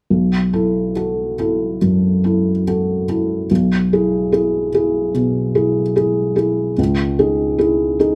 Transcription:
0.10 1.78 B1 soft
0.53 0.92 E4 soft
0.53 0.92 A4 soft
0.96 1.35 F#4 soft
0.96 1.35 A4 soft
1.39 1.77 E4 soft
1.39 1.78 A4 soft
1.82 2.49 F#2 soft
2.24 2.62 E4 soft
2.24 2.62 A4 soft
2.68 3.05 F#4 soft
2.68 3.05 A4 soft
3.08 3.46 E4 soft
3.08 3.47 A4 soft
3.51 5.11 B1 soft
3.93 4.30 E4 soft
3.93 4.29 G#4 soft
4.32 4.69 E4 soft
4.32 4.69 G#4 soft
4.74 5.11 E4 soft
4.74 5.11 G#4 soft
5.14 5.80 B2 soft
5.55 5.92 E4 soft
5.55 5.92 G#4 soft
5.96 6.33 E4 soft
5.96 6.33 G#4 soft
6.36 6.73 E4 soft
6.36 6.74 G#4 soft
6.78 8.15 C#2 soft
7.19 7.56 D#4 soft
7.19 7.56 G#4 soft
7.58 7.96 E4 soft
7.58 7.96 G#4 soft
8.00 8.15 D#4 soft
8.00 8.15 G#4 soft

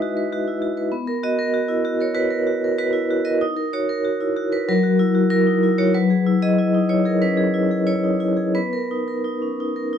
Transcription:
0.00 0.95 G#3 medium
0.00 0.96 D#4 medium
0.00 0.48 E4 medium
0.00 0.02 F#4 medium
0.00 0.26 F#4 medium
0.00 0.17 B4 medium
0.00 0.62 D#5 medium
0.00 0.95 E5 medium
0.17 0.41 B4 medium
0.33 0.56 F#4 medium
0.48 0.62 E4 soft
0.62 0.87 F#4 medium
0.77 0.93 B4 medium
0.92 2.13 B3 medium
1.07 1.33 A#4 medium
1.23 1.49 F#4 medium
1.23 2.01 D#5 medium
1.39 1.64 A#4 medium
1.54 1.79 F#4 medium
1.68 1.85 E4 medium
1.85 2.10 F#4 medium
2.01 2.26 A#4 soft
2.01 2.17 C#5 medium
2.15 2.41 F#4 medium
2.15 2.77 B4 loud
2.30 2.57 A#4 medium
2.47 2.73 F#4 medium
2.64 2.89 A#4 medium
2.79 3.04 F#4 medium
2.79 3.26 B4 medium
2.93 3.10 E4 medium
3.10 3.36 F#4 medium
3.25 3.42 A#4 medium
3.25 3.42 D#5 medium
3.41 4.65 D#4 medium
3.57 3.83 A#4 medium
3.73 3.99 F#4 medium
3.73 4.53 C#5 medium
3.89 4.15 A#4 medium
4.05 4.31 F#4 medium
4.21 4.37 E4 soft
4.37 4.62 F#4 medium
4.52 4.68 A#4 medium
4.52 4.69 B4 medium
4.69 5.91 F#3 medium
4.69 5.29 A#4 medium
4.83 5.09 F#4 medium
4.99 5.25 E4 medium
5.15 5.41 F#4 medium
5.30 5.56 E4 medium
5.30 5.78 A#4 medium
5.47 5.63 D#4 medium
5.63 5.88 E4 medium
5.78 5.95 F#4 medium
5.78 5.95 C#5 medium
5.94 7.19 F#3 medium
5.94 6.43 B4 medium
6.10 6.36 G#4 medium
6.26 6.52 E4 medium
6.42 6.68 G#4 medium
6.42 6.91 D#5 loud
6.59 6.84 E4 medium
6.74 6.90 D#4 medium
6.89 7.16 E4 medium
6.89 7.06 C#5 medium
7.05 7.32 G#4 medium
7.05 7.22 A#4 medium
7.22 7.48 C#4 medium
7.22 7.88 B4 medium
7.37 7.65 G#4 medium
7.54 7.81 E4 medium
7.71 7.98 G#4 medium
7.87 8.15 E4 medium
7.87 8.56 C#5 medium
8.04 8.22 D#4 soft
8.20 8.49 E4 medium
8.37 8.55 G#4 medium
8.55 9.90 B3 medium
8.55 9.98 B4 medium
8.73 9.01 A#4 medium
8.91 9.19 D#4 medium
9.08 9.36 A#4 soft
9.24 9.53 D#4 soft
9.42 9.60 C#4 soft
9.60 9.88 D#4 soft
9.76 9.98 A#4 soft
9.93 9.98 D#4 soft

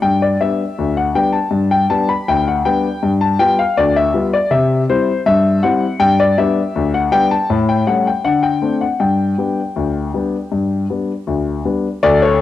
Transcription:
0.02 0.34 G2 medium
0.02 0.21 G5 medium
0.22 0.40 D5 medium
0.41 0.61 G3 soft
0.41 0.61 B3 soft
0.41 0.62 D4 soft
0.41 0.94 E5 medium
0.79 1.10 D2 medium
0.97 1.15 F#5 medium
1.15 1.36 G3 soft
1.15 1.36 B3 soft
1.15 1.36 D4 soft
1.15 1.34 G5 medium
1.33 1.63 A5 medium
1.51 1.83 G2 medium
1.71 1.90 G5 medium
1.90 2.11 G3 soft
1.90 2.11 B3 soft
1.90 2.11 D4 soft
1.90 2.09 A5 medium
2.09 2.27 B5 medium
2.28 2.60 D2 medium
2.28 2.47 G5 medium
2.48 2.66 F#5 medium
2.65 2.86 G3 soft
2.65 2.86 B3 soft
2.65 2.86 D4 soft
2.65 3.10 G5 medium
3.03 3.34 G2 medium
3.21 3.40 A5 medium
3.39 3.60 G3 soft
3.39 3.60 B3 soft
3.39 3.60 F4 medium
3.39 3.58 G5 medium
3.59 3.77 F5 medium
3.77 4.09 D2 medium
3.77 3.96 D5 medium
3.97 4.26 E5 medium
4.14 4.35 G3 soft
4.14 4.35 B3 soft
4.14 4.35 F4 medium
4.33 4.52 D5 medium
4.51 4.83 C3 medium
4.51 4.81 E5 medium
4.90 5.10 G3 soft
4.90 5.10 C4 soft
4.90 5.10 E4 medium
4.90 5.19 C5 medium
5.26 5.58 G2 medium
5.26 5.62 E5 medium
5.63 5.84 G3 medium
5.63 5.84 C4 medium
5.63 5.85 E4 medium
5.63 5.99 F#5 medium
6.00 6.32 G2 medium
6.00 6.19 G5 medium
6.20 6.38 D5 medium
6.38 6.58 G3 medium
6.38 6.59 B3 soft
6.38 6.59 D4 medium
6.38 6.91 E5 medium
6.75 7.07 D2 medium
6.94 7.13 F#5 medium
7.11 7.32 G3 medium
7.11 7.33 B3 medium
7.11 7.33 D4 medium
7.11 7.31 G5 medium
7.31 7.61 A5 medium
7.50 7.82 A2 medium
7.69 7.87 G5 medium
7.87 8.08 G3 soft
7.87 8.08 A3 soft
7.87 8.08 C#4 soft
7.87 8.06 F#5 medium
8.07 8.25 G5 medium
8.24 8.57 D3 medium
8.24 8.44 F#5 medium
8.43 8.73 G5 medium
8.62 8.83 A3 soft
8.62 8.83 C4 soft
8.62 8.84 D4 soft
8.81 9.00 F#5 medium
9.00 9.33 G2 medium
9.00 10.82 G5 medium
9.38 9.59 G3 soft
9.38 9.59 B3 soft
9.38 9.60 D4 soft
9.76 10.08 D2 medium
10.14 10.35 G3 soft
10.14 10.36 B3 soft
10.14 10.36 D4 soft
10.52 10.84 G2 medium
10.90 11.11 G3 soft
10.90 11.11 B3 soft
10.90 11.11 D4 soft
11.27 11.60 D2 medium
11.65 11.86 G3 soft
11.65 11.86 B3 soft
11.65 11.86 D4 soft
12.03 12.35 D2 medium
12.03 12.35 D3 medium
12.03 12.21 A4 medium
12.03 12.22 D5 medium
12.22 12.41 A4 medium
12.22 12.41 C#5 medium

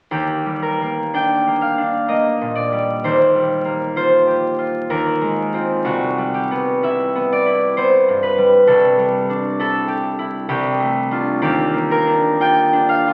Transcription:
0.11 3.03 D#2 soft
0.11 4.02 G4 medium
0.46 2.71 G3 soft
0.62 4.52 A#4 soft
0.82 1.46 A#3 soft
1.14 1.77 D4 soft
1.14 4.96 G5 medium
1.47 2.07 A#3 soft
1.61 2.43 F5 medium
1.78 3.08 D4 soft
2.08 3.64 A#3 soft
2.08 5.88 D#5 medium
2.41 3.08 A#2 soft
2.55 3.07 D5 medium
2.72 3.34 G3 soft
3.04 4.89 D#2 soft
3.04 3.95 C5 medium
3.35 4.96 G3 soft
3.65 5.89 A#3 soft
3.96 4.57 F4 soft
3.96 7.76 C5 medium
4.27 4.95 G4 soft
4.58 5.53 F4 soft
4.90 5.88 D#2 soft
4.90 5.88 A#4 medium
5.21 5.88 G#3 soft
5.54 9.44 C4 soft
5.54 5.89 F4 soft
5.84 8.66 C2 soft
5.84 6.69 F#4 medium
6.18 8.37 G3 soft
6.34 9.87 G4 soft
6.51 7.14 B3 soft
6.83 7.45 E4 soft
6.83 10.52 E5 medium
7.15 7.76 B3 soft
7.32 8.09 D5 medium
7.46 9.58 E4 soft
7.77 8.71 B3 soft
7.77 11.45 C5 medium
8.08 8.71 G2 soft
8.23 8.71 B4 medium
8.38 8.97 G3 soft
8.67 10.48 C2 soft
8.67 9.59 A4 medium
8.98 12.88 G3 soft
9.30 11.10 D4 soft
9.59 10.18 E4 soft
9.59 11.47 A4 medium
9.88 10.48 G4 soft
10.19 10.53 E4 soft
10.49 11.45 C2 medium
10.49 11.41 G4 medium
10.80 11.46 A3 soft
11.11 12.06 D4 soft
11.11 12.39 F4 soft
11.42 13.13 D#2 medium
11.42 13.13 G4 medium
11.74 13.13 A#3 soft
11.91 13.13 A#4 medium
12.07 12.72 D4 soft
12.40 13.06 F4 soft
12.40 13.13 G5 medium
12.73 13.13 D4 soft
12.89 13.13 F5 medium
13.08 13.13 F4 soft

